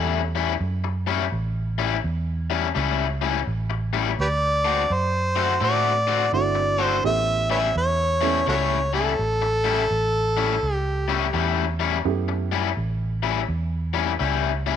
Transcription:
Already playing: fingered electric bass E2, overdriven electric guitar A2 G3 C#4 E4, harmonica A4
0.35 overdriven electric guitar A2 G3 C#4 E4
0.60 fingered electric bass F#2
0.84 muted overdriven electric guitar stroke
1.07 overdriven electric guitar A2 G3 C#4 E4
1.32 fingered electric bass A1
1.78 overdriven electric guitar A2 G3 C#4 E4
2.04 fingered electric bass E2
2.50 overdriven electric guitar A2 G3 C#4 E4
2.75 fingered electric bass C#2, overdriven electric guitar A2 G3 C#4 E4
3.21 overdriven electric guitar A2 G3 C#4 E4
3.47 fingered electric bass A1
3.70 muted overdriven electric guitar stroke
3.93 overdriven electric guitar A2 G3 C#4 E4
4.19 fingered electric bass D2, harmonica G4 B4 D5
4.65 overdriven electric guitar D3 A3 C4 F#4
4.90 fingered electric bass F#2, harmonica C5
5.36 overdriven electric guitar D3 A3 C4 F#4
5.61 fingered electric bass A2, overdriven electric guitar D3 A3 C4 F#4, harmonica D5
6.07 overdriven electric guitar D3 A3 C4 F#4
6.32 fingered electric bass G1, upright piano A3 C4 D4 E4 F#4, harmonica D5
6.55 muted overdriven electric guitar stroke
6.78 overdriven electric guitar D3 A3 C4 F#4
6.84 harmonica C5
7.04 fingered electric bass A1, upright piano A3 B3 C#4 E4 G4, harmonica E5
7.50 overdriven electric guitar A2 G3 C#4 E4, harmonica B4 C#5 E5
7.76 fingered electric bass E2, harmonica C#5
8.21 overdriven electric guitar A2 G3 C#4 E4, upright piano A3 B3 C#4 E4 A4
8.46 fingered electric bass C#2, overdriven electric guitar A2 G3 C#4 E4, harmonica F#4 A4 C#5
8.93 overdriven electric guitar A2 G3 C#4 E4, harmonica A4
9.19 fingered electric bass A1
9.42 muted overdriven electric guitar stroke
9.64 overdriven electric guitar A2 G3 C#4 E4
9.91 fingered electric bass A1
10.37 overdriven electric guitar A2 G3 C#4 E4
10.63 fingered electric bass C#2
10.74 harmonica G4
11.08 overdriven electric guitar A2 G3 C#4 E4
11.33 fingered electric bass E2, overdriven electric guitar A2 G3 C#4 E4
11.80 overdriven electric guitar A2 G3 C#4 E4
12.05 fingered electric bass F#2, upright piano A3 B3 C#4 E4 G4
12.28 muted overdriven electric guitar stroke
12.52 overdriven electric guitar A2 G3 C#4 E4
12.77 fingered electric bass A1
13.23 overdriven electric guitar A2 G3 C#4 E4
13.48 fingered electric bass E2
13.94 overdriven electric guitar A2 G3 C#4 E4
14.19 fingered electric bass C#2, overdriven electric guitar A2 G3 C#4 E4
14.66 overdriven electric guitar A2 G3 C#4 E4

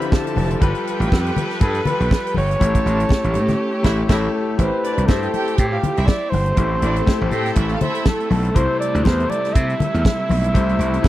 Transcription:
Already playing: string section D3 F3 C4 G4 E5, grand piano D3 C4 E4 F4 G4
0.01 closed hi-hat
0.12 violin section A4 A5, kick, snare, high conga
0.27 closed hi-hat
0.36 slap bass F1, open hi-hat, high conga
0.51 closed hi-hat
0.60 slap bass G1, grand piano G3 F4 A4 B4, string section G3 A4 B4, violin section G4 G5, kick, closed hi-hat, muted conga
0.75 closed hi-hat
0.87 closed hi-hat
1.00 slap bass A1, closed hi-hat
1.12 slap bass F2, flugelhorn G4, kick, snare, high conga
1.26 closed hi-hat
1.37 closed hi-hat, muted conga, low conga
1.51 snare, closed hi-hat
1.60 slap bass G2, grand piano G3 F4 A4 B4, flugelhorn A4, kick, closed hi-hat, muted conga
1.74 closed hi-hat
1.84 grand piano G3 F4 A4 B4, violin section G4 G5, flugelhorn B4, closed hi-hat, muted conga, low conga
2.00 slap bass B1, closed hi-hat
2.11 kick, snare, high conga
2.27 closed hi-hat
2.34 slap bass G1, flugelhorn C#5, open hi-hat, high conga
2.51 closed hi-hat
2.59 slap bass A1, grand piano A3 E4 G4 C#5, string section A3 C#4 G4, violin section A4 A5, kick, closed hi-hat, muted conga
2.75 kick, closed hi-hat
2.86 slap bass A1, closed hi-hat
3.00 closed hi-hat
3.09 kick, snare, high conga
3.24 slap bass A1, closed hi-hat
3.34 slap bass A2, closed hi-hat, muted conga
3.49 snare, closed hi-hat, low conga
3.83 slap bass A1, grand piano A3 E4 G4 C#5, violin section E4 E5, flugelhorn C#5, kick, snare, crash
4.08 slap bass A1, grand piano A3 E4 G4 C#5, violin section E4 E5, flugelhorn A4, kick, snare, crash
4.34 flugelhorn A4
4.58 slap bass A1, grand piano A3 C4 E4 G4, string section A3 C4 G4, violin section C4 C5, flugelhorn B4, kick, closed hi-hat, muted conga
4.84 violin section D4 D5, closed hi-hat
4.98 slap bass C2, closed hi-hat
5.06 slap bass G2, grand piano A3 E4 G4 C5, violin section E4 E5, flugelhorn A4, kick, snare, high conga
5.23 violin section G4 G5, closed hi-hat
5.33 violin section G4 G5, closed hi-hat, muted conga
5.48 closed hi-hat
5.56 slap bass A2, flugelhorn G4, kick, closed hi-hat
5.71 violin section F4 F5
5.83 closed hi-hat, muted conga, low conga
5.96 slap bass C2, violin section E4 E5, closed hi-hat
6.06 flugelhorn D5, kick, snare, high conga
6.30 slap bass G1, flugelhorn C5, open hi-hat, high conga
6.46 closed hi-hat
6.56 slap bass A1, grand piano A3 E4 G4 C5, string section A4, kick, closed hi-hat, muted conga
6.82 slap bass A1, violin section D4 D5, closed hi-hat
6.96 violin section C4 C5, closed hi-hat
7.06 grand piano A3 E4 G4 C5, kick, snare, high conga
7.21 slap bass A1
7.32 slap bass A2, violin section G4 G5, closed hi-hat, muted conga
7.46 snare, closed hi-hat
7.55 slap bass A1, violin section E4 E5, kick, closed hi-hat, muted conga
7.69 violin section F4 F5, closed hi-hat
7.81 violin section E4 E5, flugelhorn C5, closed hi-hat, muted conga, low conga
7.95 closed hi-hat
8.06 flugelhorn A4, kick, snare, high conga
8.20 closed hi-hat
8.30 slap bass B1, flugelhorn A4, open hi-hat, high conga
8.45 closed hi-hat
8.54 slap bass C2, grand piano C3 A3 E4 C5, string section C3 G3 E4, flugelhorn C5, kick, closed hi-hat, muted conga
8.80 flugelhorn D5, closed hi-hat
8.95 slap bass D2, closed hi-hat
9.04 slap bass E2, grand piano C3 A3 E4 C5, flugelhorn C5, kick, snare, high conga
9.20 closed hi-hat
9.30 flugelhorn D5, closed hi-hat, muted conga
9.45 snare, closed hi-hat
9.53 slap bass C3, flugelhorn E5, kick, closed hi-hat, muted conga
9.70 closed hi-hat
9.80 closed hi-hat, muted conga, low conga
9.94 slap bass E2, closed hi-hat
10.05 kick, snare, high conga
10.30 slap bass B1, open hi-hat, high conga
10.44 closed hi-hat
10.54 slap bass C2, grand piano C3 A3 E4 C5, kick, closed hi-hat, muted conga
10.69 closed hi-hat
10.79 slap bass C2, closed hi-hat
10.94 closed hi-hat
11.03 grand piano C3 A3 E4 B4, kick, high conga

